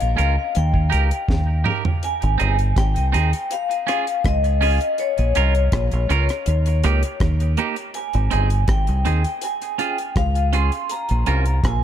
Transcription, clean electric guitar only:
0.17 0.34 C#4 medium
0.17 0.35 F4 medium
0.17 0.35 A#4 medium
0.90 1.08 D#4 medium
0.90 1.08 G4 medium
0.90 1.09 A#4 medium
1.64 1.82 D#4 medium
1.64 1.83 G4 medium
1.64 1.83 A#4 medium
2.38 2.56 C4 medium
2.38 2.57 D#4 medium
2.38 2.57 G#4 medium
3.12 3.30 C4 medium
3.12 3.31 D#4 medium
3.12 3.31 G#4 medium
3.87 4.04 C#4 medium
3.87 4.05 F4 medium
3.87 4.05 G#4 loud
4.61 4.78 C#4 loud
4.61 4.79 F4 medium
4.61 4.79 G#4 medium
5.36 5.53 C#4 medium
5.36 5.53 F4 medium
5.36 5.53 A#4 medium
6.09 6.27 C#4 medium
6.09 6.27 F4 medium
6.09 6.27 A#4 medium
6.84 7.01 A#3 medium
6.84 7.01 D#4 medium
6.84 7.02 G4 medium
7.58 7.75 A#3 medium
7.58 7.75 D#4 loud
7.58 7.75 G4 medium
8.31 8.48 C4 medium
8.31 8.49 D#4 medium
8.31 8.49 G#4 loud
9.05 9.22 C4 medium
9.05 9.23 D#4 medium
9.05 9.23 G#4 medium
9.78 9.96 C#4 medium
9.78 9.96 F4 medium
9.78 9.97 G#4 medium
10.53 10.70 C#4 medium
10.53 10.70 F4 medium
10.53 10.71 G#4 medium
11.27 11.44 C#4 medium
11.27 11.44 F4 medium
11.27 11.45 A#4 medium

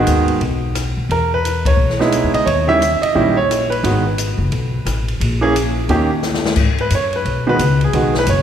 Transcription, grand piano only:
0.00 0.39 D#3 medium
0.00 0.39 G#3 medium
0.00 0.39 B3 medium
0.00 0.39 F#4 medium
1.12 1.31 A#4 medium
1.34 1.65 B4 medium
1.67 2.31 C#5 medium
1.99 2.45 G#3 medium
1.99 2.44 B3 medium
1.99 2.44 D#4 medium
1.99 2.45 E4 medium
2.34 2.46 D#5 medium
2.46 2.66 C#5 medium
2.67 2.79 D#3 medium
2.67 2.80 G3 medium
2.67 2.80 C#4 medium
2.67 2.80 E4 medium
2.67 3.04 E5 loud
3.02 3.34 D#5 medium
3.15 3.35 D#3 medium
3.15 3.35 G3 medium
3.15 3.35 C#4 soft
3.15 3.35 E4 medium
3.37 3.72 C#5 medium
3.70 5.03 B4 medium
3.83 4.03 D#3 soft
3.83 4.03 G#3 soft
3.83 4.03 B3 soft
3.83 4.03 F#4 medium
5.41 5.53 E3 medium
5.41 5.53 A#3 medium
5.41 5.54 C#4 medium
5.41 5.54 G#4 medium
5.89 6.08 D#3 medium
5.89 6.08 A#3 soft
5.89 6.09 C#4 medium
5.89 6.09 G4 medium
6.81 6.92 B4 medium
6.95 7.14 C#5 medium
7.16 7.46 B4 medium
7.47 7.58 D#3 medium
7.47 7.58 G#3 medium
7.47 7.58 B3 medium
7.47 7.59 F#4 medium
7.47 7.80 B4 medium
7.84 8.14 G#4 medium
7.94 8.13 D#3 soft
7.94 8.13 G#3 soft
7.94 8.13 B3 soft
7.94 8.14 F#4 medium
8.19 8.29 B4 medium
8.30 8.42 C#5 medium

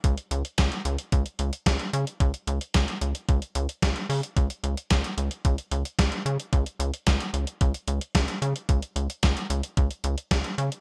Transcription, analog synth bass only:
0.04 0.16 C#2 loud
0.31 0.43 C#2 loud
0.58 0.70 C#2 loud
0.85 0.97 C#2 loud
1.12 1.24 C#2 loud
1.39 1.51 C#2 loud
1.66 1.78 C#2 loud
1.93 2.05 C#3 loud
2.20 2.32 C#2 loud
2.47 2.59 C#2 loud
2.75 2.86 C#2 loud
3.01 3.13 C#2 loud
3.29 3.40 C#2 loud
3.55 3.67 C#2 loud
3.82 3.94 C#2 loud
4.09 4.21 C#3 loud
4.37 4.48 C#2 loud
4.64 4.75 C#2 loud
4.91 5.02 C#2 loud
5.18 5.29 C#2 loud
5.45 5.57 C#2 loud
5.71 5.83 C#2 loud
5.99 6.10 C#2 loud
6.26 6.37 C#3 loud
6.53 6.64 C#2 loud
6.80 6.91 C#2 loud
7.07 7.19 C#2 loud
7.34 7.45 C#2 loud
7.61 7.73 C#2 loud
7.88 8.00 C#2 loud
8.15 8.27 C#2 loud
8.42 8.54 C#3 loud
8.69 8.81 C#2 loud
8.96 9.08 C#2 loud
9.23 9.35 C#2 loud
9.50 9.62 C#2 loud
9.77 9.89 C#2 loud
10.04 10.16 C#2 loud
10.31 10.43 C#2 loud
10.58 10.70 C#3 loud

